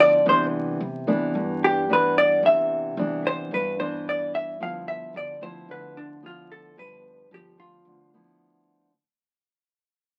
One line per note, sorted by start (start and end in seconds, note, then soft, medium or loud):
0.00 0.22 D2 medium
0.00 0.23 D3 soft
0.00 0.22 F3 medium
0.00 0.22 B3 medium
0.00 0.22 E4 medium
0.00 0.26 D5 medium
0.26 0.76 C2 medium
0.26 1.32 C3 soft
0.26 0.80 E3 soft
0.26 0.80 B3 soft
0.26 0.80 D4 medium
0.26 0.44 C5 medium
0.80 1.06 C2 medium
1.07 1.33 G2 medium
1.07 1.84 E3 medium
1.07 1.84 B3 medium
1.07 1.85 D4 medium
1.35 2.39 G2 medium
1.35 2.41 G2 soft
1.64 1.89 G4 medium
1.89 2.93 E3 medium
1.89 2.93 B3 medium
1.89 2.94 D4 medium
1.89 2.17 B4 medium
2.18 2.43 D5 medium
2.43 2.93 C2 medium
2.43 3.49 C3 soft
2.43 3.22 E5 medium
2.97 3.22 C2 medium
2.97 3.75 E3 medium
2.97 3.75 B3 medium
2.97 3.75 D4 medium
3.24 3.50 G2 medium
3.24 3.52 C5 medium
3.51 4.56 G2 medium
3.51 4.58 G2 soft
3.51 3.79 B4 medium
3.80 4.56 E3 medium
3.80 4.56 B3 medium
3.80 4.56 D4 medium
3.80 4.05 C5 medium
4.09 4.34 D5 medium
4.35 4.60 E5 medium
4.60 5.11 G1 medium
4.60 5.66 G2 medium
4.60 5.37 F3 medium
4.60 5.38 B3 medium
4.60 5.38 E4 medium
4.60 4.88 F5 medium
4.88 5.14 E5 medium
5.14 5.39 G1 medium
5.14 5.42 D5 medium
5.41 5.67 D2 medium
5.41 6.18 F3 medium
5.41 6.19 B3 medium
5.41 6.19 E4 medium
5.41 5.68 C5 medium
5.68 6.73 D2 medium
5.68 6.74 D3 soft
5.68 5.96 B4 medium
5.97 6.23 D4 medium
6.22 7.27 F3 medium
6.22 7.27 B3 medium
6.22 7.27 E4 medium
6.22 6.51 F4 medium
6.52 6.77 A4 medium
6.77 7.27 G1 medium
6.77 7.83 G2 soft
6.77 7.28 B4 medium
7.31 7.56 G1 medium
7.31 8.08 F3 medium
7.31 8.08 B3 soft
7.31 7.59 G4 medium
7.58 7.83 D2 medium
7.58 8.09 F4 medium
7.85 8.90 D2 medium
7.85 8.91 D3 soft
8.14 8.90 F3 soft
8.14 8.90 B3 medium
8.14 8.90 E4 medium